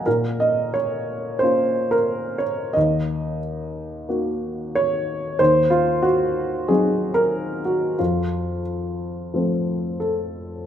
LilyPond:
<<
  \new Staff \with { instrumentName = "Upright piano" } { \time 4/4 \key bes \minor \tempo 4 = 90 bes'8 ees''8 des''4 c''8. bes'8. des''8 | ees''4 r2 des''4 | c''8 f'8 ges'4 aes'8. bes'8. ges'8 | f'4 r2 a'4 | }
  \new Staff \with { instrumentName = "Upright piano" } { \time 4/4 \key bes \minor bes,2 <bes des' f'>2 | ees,2 <bes ees' ges'>2 | ees,2 <ges c' ees'>2 | f,2 <f a c'>2 | }
>>